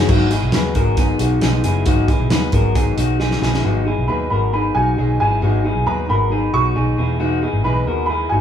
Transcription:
Already playing: F#4 G#4 B4 C#5
0.08 G#1 G#2 D#3 F#3 B3 D#4 F#4 G#4, kick, crash
0.30 F#3 B3 D#4 E4 G#4, closed hi-hat
0.42 B1
0.52 D#2 F#3 B3 D#4 G#4 B4, snare, closed hi-hat
0.75 G#1 F#3 B3 D#4 F#4 G#4 A#4, kick, closed hi-hat
0.97 G#2 D#3 F#3 B3 D#4 G#4, kick, closed hi-hat
1.19 B1 F#3 B3 D#4 F#4 G#4, closed hi-hat
1.41 B1 F#3 B3 D#4 G#4, snare, closed hi-hat
1.64 F#1 F#3 B3 D#4 E4 G#4, closed hi-hat
1.86 G#1 G#2 D#3 F#3 B3 D#4 F#4 G#4, kick, closed hi-hat
2.08 F#3 B3 D#4 E4 G#4, kick, closed hi-hat
2.20 B1
2.30 D#2 F#3 B3 D#4 G#4 B4, snare, closed hi-hat
2.52 G#1 F#3 B3 D#4 F#4 G#4 A#4, kick, closed hi-hat
2.75 G#2 D#3 F#3 B3 D#4 G#4, kick, closed hi-hat
2.97 B1 F#3 B3 D#4 F#4 G#4, closed hi-hat
3.19 F#3 B3 D#4 G#4, snare
3.31 snare
3.41 B1 F#3 B3 D#4 E4 G#4, snare
3.54 snare
3.64 G#1 G#2 D#3 F#3 B3 D#4 F#4 G#4
3.86 F#3 B3 D#4 E4 G#4
3.98 B1
4.08 D#2 G#2 D#3 F#3 B3 D#4 G#4 B4 B5
4.30 G#1 F#3 B3 D#4 F#4 G#4 A#4 B5
4.52 F#3 B3 D#4 G#4 B5
4.75 B1 F#3 B3 D#4 F#4 G#4 G#5
4.98 B1 G#2 D#3 F#3 B3 D#4 G#4
5.19 G#1 F#3 B3 D#4 E4 G#4 G#5
5.41 G#1 G#2 D#3 F#3 B3 D#4 F#4 G#4
5.63 F#3 B3 D#4 E4 G#4
5.76 B1
5.85 D#2 G#2 D#3 F#3 B3 D#4 G#4 B4 A#5
6.08 G#1 F#3 B3 D#4 F#4 G#4 A#4 B5
6.29 F#3 B3 D#4 G#4
6.53 B1 F#3 B3 D#4 F#4 G#4 C#6
6.75 B1 G#2 D#3 F#3 B3 D#4 G#4
6.97 E1 B3 D#4 E4 G#4
7.19 E3 G#3 B3 D#4 F#4 G#4
7.42 B3 D#4 E4 G#4
7.53 G#1
7.64 B1 E3 G#3 B3 D#4 G#4 B4 B5
7.86 D#2 B3 D#4 F#4 G#4 A#4
8.06 G#3 B3 D#4 B5
8.11 E4 G#4
8.29 G#1 B3 D#4 F#4 G#4 G#5

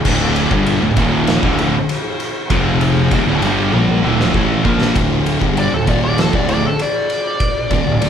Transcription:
0.05 D1 D2 A2 D3, kick, crash
0.36 ride
0.51 G1 G2 D3 G3, kick
0.66 ride
0.82 D1 D2 A2
0.96 D#1 D#2 A#2 D#3, kick, ride
1.27 snare, ride
1.43 D1 D2 A2 D3, kick
1.59 ride
1.89 ride
2.20 ride
2.50 F1 F2 C3 F3, kick, ride
2.81 ride
3.11 D#1 D#2 A#2, kick, ride
3.26 D1 D2 A2
3.42 G1 G2 D3 G3, ride
3.72 A#1 A#2 F3 A#3, high tom
3.88 high tom
4.02 D1 D2 A2 D3
4.20 snare
4.33 A1 A2 E3 A3, kick
4.64 A#1 A#2 F3 A#3, kick
4.81 snare
4.95 D1 D2 A2 D3, kick, ride
5.26 ride
5.40 G1 G2 D3 G3, kick
5.57 D5, ride
5.71 D1 D2 A2 A4
5.86 D#1 D#2 A#2 D#3 D5, kick, ride
6.05 D5
6.18 A4, snare, ride
6.33 D1 D2 A2 D3 D5, kick
6.49 D5, ride
6.66 A4
6.79 D5, ride
7.10 D5, ride
7.40 kick, ride
7.70 D#1 D#2 A#2, kick, ride
7.86 D1 D2 A2
8.01 D1 D2 A2, ride

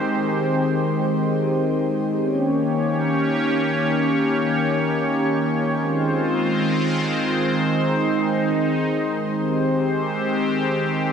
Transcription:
Already playing: D#3 G#3 C4 G4 C5
2.22 A#3 C#4 G4 C#5
5.80 D#3 G#3 C4 F4 C5
7.59 D#4
9.38 D#3 G#3 C4 G4 C5

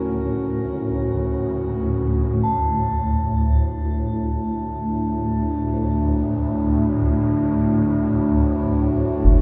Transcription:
Already playing: D2 A2 C#4 F#4 A#4 A5
2.43 D2 A2 A5
2.47 A3
3.28 D4
6.24 F#4
9.24 concert bass drum

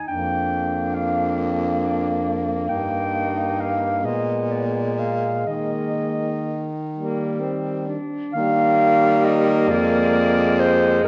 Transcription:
0.08 F2 A#3 D4 G5
0.94 F5
2.69 G2 D#4 G5
3.60 F5
4.04 A#2 G#3 B3 D#5
4.51 D5
4.99 F5
5.47 D#3 A#3 D#5
6.92 G3 A#3
7.40 C4
7.88 D4
8.33 D#3 G3 A#3 F5
9.25 D#5
9.69 F2 G#3 D5
10.60 C5
11.03 G2 D#4 A#4

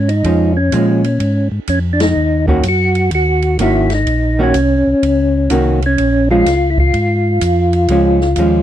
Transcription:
Already playing: G#2
0.08 D#4, ride
0.24 F2 F3 G#3 C#4, kick, ride
0.57 C#4
0.72 A#2 F3 G#3 C#4, kick, hi-hat pedal, ride
1.04 ride
1.20 G#2, kick, ride
1.52 G#2
1.67 F2 C#4, kick, hi-hat pedal, ride
1.93 D4
2.00 D#4, snare, ride
2.16 D#2
2.47 D#3 A#3 C#4 F#4, kick
2.63 F#2, kick, hi-hat pedal, ride
2.69 F#4
2.95 ride
3.11 D#2 F#4, kick, ride
3.42 ride
3.59 G#1 D#3 A#3 C#4 E4 F#4, kick, hi-hat pedal, ride
3.90 snare, ride
3.95 D#4
4.07 A#1, kick, ride
4.39 D#3 A#3 C#4 F#4
4.54 C2, kick, hi-hat pedal, ride
4.87 C2
5.03 C#2, kick, ride
5.50 C2 D#3 A#3 C#4 F#4, kick, hi-hat pedal, ride
5.82 C#4, ride
5.98 A#1, kick, ride
6.31 F3 G#3 C#4 F4
6.46 C#2, kick, snare, hi-hat pedal, ride
6.70 E4
6.78 F4, kick
6.93 G#2, kick, ride
7.41 F2, kick, hi-hat pedal, ride
7.73 ride
7.88 C#2 F3 G#3 C#4, kick, ride
8.21 snare
8.36 D#2 F3 G#3 C#4, kick, hi-hat pedal, ride

